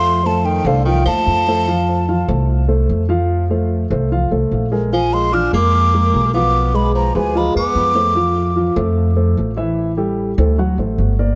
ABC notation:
X:1
M:4/4
L:1/8
Q:1/4=148
K:Bb
V:1 name="Flute"
c' a g f g a3- | a3 z4 z | z8 | _a c' f' d'4 d'- |
d' =b _b ^g =b d'3- | d'3 z4 z | z8 |]
V:2 name="Grand piano"
[F,Ff] [A,Ac]2 [A,Ac] [F,Ff] [A,Ac]2 [A,Ac] | [F,Ff]2 [F,Ff] [A,Ac]2 [A,Ac]2 [F,Ff]- | [F,Ff] [A,Ac]2 [A,Ac] [F,Ff] [A,Ac]2 [_A,_AB] | [F,Ff]2 [F,Ff] [_A,_AB]2 [A,AB]2 [F,Ff]- |
[F,Ff] [^G,^G=B]2 [G,GB] [F,Ff] [G,GB]2 [A,Ac] | [F,Ff]2 [F,Ff] [A,Ac]2 [A,Ac]2 [=E,=E=e]- | [=E,=E=e] [G,GA]2 [A,Ac] [^F,^F^f] [A,Ac]2 [B,Bd] |]
V:3 name="Tenor saxophone" clef=bass
A, F, E, D, E, F,3- | F,3 z4 z | z8 | F, _A, D B,4 =B,- |
=B, ^G, F, F, G, B,3 | z8 | z8 |]
V:4 name="Upright bass" clef=bass
F,,3 C,,2 E,, F,,2- | F,,3 C,,3 F,,2- | F,,3 C,,2 C,, B,,,2- | B,,,3 F,,3 =B,,,2- |
=B,,,3 D,,2 =E,, F,,2- | F,,3 F,,3 A,,,2- | A,,,3 D,,2 A,,, G,,,2 |]